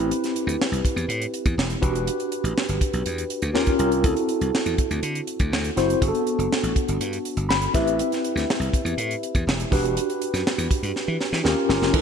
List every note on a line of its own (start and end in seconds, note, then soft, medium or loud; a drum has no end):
0.00 0.11 A1 medium
0.00 0.64 C4 medium
0.00 0.64 E4 medium
0.00 0.65 G4 medium
0.00 0.65 B4 medium
0.11 closed hi-hat medium
0.24 snare soft
0.24 closed hi-hat soft
0.36 closed hi-hat medium
0.47 0.55 D2 medium
0.47 closed hi-hat soft
0.61 snare loud
0.72 0.80 C2 medium
0.72 closed hi-hat soft
0.85 kick medium
0.85 closed hi-hat medium
0.96 1.05 E2 medium
0.96 closed hi-hat soft
1.08 1.25 A2 medium
1.08 closed hi-hat medium
1.22 closed hi-hat soft
1.34 closed hi-hat medium
1.46 1.54 E2 medium
1.46 kick medium
1.46 closed hi-hat soft
1.58 1.75 E1 medium
1.58 snare loud
1.70 closed hi-hat soft
1.81 2.08 E1 medium
1.81 2.61 D4 medium
1.81 2.61 F#4 medium
1.81 2.61 G4 medium
1.81 2.61 B4 medium
1.81 kick medium
1.81 closed hi-hat medium
1.95 closed hi-hat soft
2.07 closed hi-hat medium
2.20 closed hi-hat soft
2.32 closed hi-hat medium
2.44 2.52 A1 medium
2.44 closed hi-hat soft
2.58 snare loud
2.69 2.77 G1 medium
2.69 closed hi-hat soft
2.81 kick medium
2.81 closed hi-hat medium
2.93 3.02 B1 medium
2.93 closed hi-hat soft
3.06 3.23 E2 medium
3.06 closed hi-hat medium
3.18 closed hi-hat soft
3.30 closed hi-hat medium
3.42 3.51 D2 medium
3.42 closed hi-hat soft
3.54 3.72 D#2 loud
3.54 3.74 C#4 medium
3.54 3.75 F4 medium
3.54 3.75 G4 medium
3.54 3.75 A#4 medium
3.54 snare medium
3.66 kick medium
3.66 closed hi-hat soft
3.78 4.04 C2 medium
3.78 3.96 C#4 medium
3.78 3.96 F4 medium
3.78 3.96 G4 medium
3.78 3.97 A#4 medium
3.78 closed hi-hat medium
3.92 closed hi-hat soft
4.03 4.13 D2 loud
4.03 4.70 C4 medium
4.03 4.71 E4 medium
4.03 4.71 F#4 medium
4.03 4.71 A4 medium
4.03 kick loud
4.03 closed hi-hat medium
4.17 closed hi-hat soft
4.29 closed hi-hat medium
4.41 4.50 C2 medium
4.41 closed hi-hat soft
4.55 snare medium
4.66 4.74 E2 medium
4.66 closed hi-hat soft
4.78 kick medium
4.78 closed hi-hat medium
4.91 4.99 D2 medium
4.91 closed hi-hat soft
5.03 5.20 D3 medium
5.03 closed hi-hat medium
5.15 closed hi-hat soft
5.27 closed hi-hat medium
5.39 5.49 D2 medium
5.39 kick medium
5.39 closed hi-hat soft
5.52 5.69 D2 medium
5.52 snare medium
5.64 closed hi-hat soft
5.76 5.94 F#1 medium
5.76 5.93 C4 medium
5.76 5.94 E4 medium
5.76 5.94 F#4 medium
5.76 5.94 C5 medium
5.76 snare soft
5.76 closed hi-hat medium
5.90 closed hi-hat medium
6.01 6.10 G1 medium
6.01 6.68 B3 medium
6.01 6.68 D4 medium
6.01 6.68 F#4 medium
6.01 6.08 G#4 medium
6.01 kick loud
6.01 closed hi-hat medium
6.08 6.72 A4 medium
6.15 closed hi-hat soft
6.27 closed hi-hat medium
6.38 6.47 F#1 medium
6.38 closed hi-hat soft
6.52 snare medium
6.63 6.72 A1 medium
6.63 closed hi-hat soft
6.76 kick medium
6.76 closed hi-hat medium
6.88 6.97 G1 medium
6.88 closed hi-hat soft
7.00 7.17 G2 medium
7.00 closed hi-hat medium
7.13 closed hi-hat soft
7.25 closed hi-hat medium
7.37 7.45 G1 medium
7.37 closed hi-hat soft
7.49 7.66 G1 medium
7.49 7.72 B5 medium
7.49 snare loud
7.62 closed hi-hat soft
7.74 8.00 A1 medium
7.74 8.53 C4 medium
7.74 8.53 E4 medium
7.74 8.54 G4 medium
7.74 8.54 B4 medium
7.74 7.97 E5 medium
7.74 kick medium
7.74 snare soft
7.74 closed hi-hat medium
7.87 closed hi-hat soft
7.99 closed hi-hat medium
8.12 snare soft
8.12 closed hi-hat soft
8.24 closed hi-hat medium
8.35 8.44 D2 medium
8.35 snare soft
8.35 closed hi-hat medium
8.50 snare medium
8.60 8.68 C2 medium
8.60 closed hi-hat soft
8.73 kick medium
8.73 closed hi-hat medium
8.85 8.93 E2 medium
8.85 closed hi-hat soft
8.97 9.14 A2 medium
8.97 closed hi-hat medium
9.11 closed hi-hat soft
9.23 closed hi-hat medium
9.35 9.43 E2 medium
9.35 kick medium
9.35 closed hi-hat soft
9.47 9.64 E1 medium
9.47 snare loud
9.60 closed hi-hat soft
9.71 9.97 E1 medium
9.71 10.50 D4 medium
9.71 10.51 F#4 medium
9.71 10.51 G4 medium
9.71 10.51 B4 medium
9.71 kick medium
9.71 snare soft
9.71 open hi-hat medium
9.85 closed hi-hat soft
9.97 closed hi-hat medium
10.10 closed hi-hat soft
10.22 closed hi-hat medium
10.34 10.42 F#2 medium
10.34 snare soft
10.34 closed hi-hat soft
10.47 snare medium
10.58 10.67 E2 medium
10.58 closed hi-hat soft
10.71 kick medium
10.71 closed hi-hat medium
10.83 10.91 G2 medium
10.83 closed hi-hat soft
10.96 snare soft
11.08 11.16 E3 medium
11.21 snare medium
11.33 11.41 E3 medium
11.33 snare medium
11.43 11.53 D#2 medium
11.43 11.64 C#4 medium
11.43 11.64 F4 medium
11.43 11.64 G4 medium
11.43 11.64 A#4 medium
11.43 snare medium
11.68 11.78 G1 medium
11.68 11.85 C#4 medium
11.68 11.86 F4 medium
11.68 11.86 G4 medium
11.68 11.86 A#4 medium
11.68 snare medium
11.82 11.90 F1 medium
11.82 snare medium
11.93 12.02 G1 medium
11.93 12.02 D4 medium
11.93 12.02 E4 medium
11.93 12.02 A4 medium
11.93 12.02 B4 medium
11.93 kick loud
11.93 crash medium